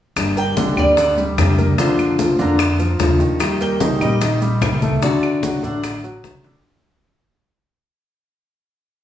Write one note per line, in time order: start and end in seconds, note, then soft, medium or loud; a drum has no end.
0.16 0.73 G1 medium
0.16 0.76 D3 medium
0.16 0.77 G3 medium
0.16 0.78 A#3 medium
0.16 0.77 D4 medium
0.16 0.75 G4 medium
0.16 high bongo medium
0.16 high conga soft
0.16 claves medium
0.16 maracas medium
0.37 0.53 A#3 medium
0.37 0.54 A#4 medium
0.37 0.79 G5 loud
0.37 high bongo soft
0.37 high conga soft
0.37 maracas soft
0.57 0.74 D3 medium
0.57 0.74 D4 medium
0.57 high bongo medium
0.57 high conga medium
0.57 maracas medium
0.77 1.34 D2 medium
0.77 0.94 G3 medium
0.77 0.96 G3 soft
0.77 0.97 A#3 medium
0.77 0.97 D4 medium
0.77 0.96 G4 medium
0.77 0.94 G4 medium
0.77 1.76 D5 medium
0.77 high bongo soft
0.77 claves medium
0.77 maracas soft
0.97 1.14 D3 medium
0.97 1.14 D4 medium
0.97 muted nylon-string guitar stroke medium
0.97 high bongo medium
0.97 high conga soft
0.97 maracas medium
1.17 1.51 G3 medium
1.17 1.51 G4 medium
1.17 high bongo soft
1.17 high conga soft
1.17 maracas soft
1.37 1.73 F2 medium
1.37 1.77 G3 medium
1.37 1.77 A#3 soft
1.37 1.78 D4 medium
1.37 1.78 G4 medium
1.37 high bongo medium
1.37 low bongo medium
1.37 high conga medium
1.37 claves medium
1.37 maracas medium
1.58 1.75 A#3 medium
1.58 1.75 A#4 medium
1.58 high conga medium
1.58 maracas soft
1.78 2.12 D3 medium
1.78 2.38 F3 medium
1.78 2.41 A#3 medium
1.78 2.12 D4 medium
1.78 2.39 D4 medium
1.78 2.38 F4 medium
1.78 2.42 C5 medium
1.78 high bongo medium
1.78 high conga soft
1.78 maracas medium
1.98 high bongo soft
1.98 high conga soft
1.98 claves medium
1.98 maracas soft
2.19 2.35 F3 medium
2.19 2.36 F4 medium
2.19 high bongo medium
2.19 high conga medium
2.19 maracas medium
2.39 2.96 F2 medium
2.39 2.72 D3 medium
2.39 2.59 A#3 medium
2.39 2.72 D4 medium
2.39 2.59 D4 medium
2.39 2.59 F4 medium
2.39 3.17 A#4 medium
2.39 high bongo soft
2.39 high conga soft
2.39 maracas soft
2.59 muted nylon-string guitar stroke medium
2.59 high bongo medium
2.59 high conga soft
2.59 claves medium
2.59 maracas medium
2.79 3.13 F3 medium
2.79 3.13 F4 medium
2.79 high conga soft
2.79 maracas soft
2.99 3.35 D#2 medium
2.99 3.40 F3 soft
2.99 3.40 A#3 medium
2.99 3.40 D4 medium
2.99 3.41 F4 medium
2.99 high bongo medium
2.99 low bongo medium
2.99 high conga medium
2.99 maracas medium
3.20 3.53 D#3 medium
3.20 high bongo soft
3.20 maracas soft
3.40 4.00 D#3 medium
3.40 4.00 G3 medium
3.40 4.01 A#3 medium
3.40 4.00 D#4 medium
3.40 3.99 G4 medium
3.40 high bongo medium
3.40 high conga soft
3.40 claves medium
3.40 maracas medium
3.61 3.77 A#3 medium
3.61 3.77 A#4 medium
3.61 4.02 G5 loud
3.61 high bongo soft
3.61 high conga soft
3.61 maracas soft
3.80 3.97 D#3 medium
3.80 3.98 D#4 medium
3.80 high bongo medium
3.80 high conga medium
3.80 maracas medium
4.01 4.58 A#1 medium
4.01 4.18 G3 medium
4.01 4.20 G3 soft
4.01 4.20 A#3 medium
4.01 4.20 D#4 medium
4.01 4.20 G4 medium
4.01 4.18 G4 medium
4.01 4.99 D#5 medium
4.01 high bongo soft
4.01 claves medium
4.01 maracas soft
4.21 4.38 D#3 medium
4.21 4.38 D#4 medium
4.21 muted nylon-string guitar stroke medium
4.21 high bongo medium
4.21 high conga soft
4.21 maracas medium
4.41 4.75 G3 medium
4.41 4.75 G4 medium
4.41 high bongo soft
4.41 high conga soft
4.41 maracas soft
4.61 4.98 D2 medium
4.61 5.01 G3 medium
4.61 5.02 A#3 medium
4.61 5.02 D#4 medium
4.61 5.02 G4 medium
4.61 high bongo medium
4.61 low bongo medium
4.61 high conga medium
4.61 claves medium
4.61 maracas medium
4.82 4.99 A3 medium
4.82 4.99 A4 medium
4.82 high conga medium
4.82 maracas soft
5.02 5.62 D3 medium
5.02 5.36 D3 medium
5.02 5.63 A3 medium
5.02 5.36 D4 medium
5.02 5.62 D4 medium
5.02 5.62 F#4 medium
5.02 5.60 D5 medium
5.02 high bongo medium
5.02 high conga soft
5.02 maracas medium
5.23 high bongo soft
5.23 high conga soft
5.23 claves medium
5.23 maracas soft
5.43 5.60 F#3 medium
5.43 5.60 F#4 medium
5.43 high bongo medium
5.43 high conga medium
5.43 maracas medium
5.63 6.20 A1 medium
5.63 5.97 D3 medium
5.63 5.83 A3 medium
5.63 5.97 D4 medium
5.63 5.83 D4 medium
5.63 5.83 F#4 medium
5.63 6.41 F#5 medium
5.63 high bongo soft
5.63 high conga soft
5.63 maracas soft
5.83 muted nylon-string guitar stroke medium
5.83 high bongo medium
5.83 high conga soft
5.83 claves medium
5.83 maracas medium
6.04 6.37 F#3 medium
6.04 6.37 F#4 medium
6.04 high conga soft
6.04 maracas soft
6.24 6.60 D2 medium
6.24 6.64 D3 medium
6.24 6.64 A3 soft
6.24 6.65 D4 soft
6.24 6.65 F#4 medium
6.24 high bongo medium
6.24 low bongo medium
6.24 high conga medium
6.24 maracas medium
6.44 6.61 D3 medium
6.44 6.61 D4 medium
6.44 high bongo medium
6.44 maracas soft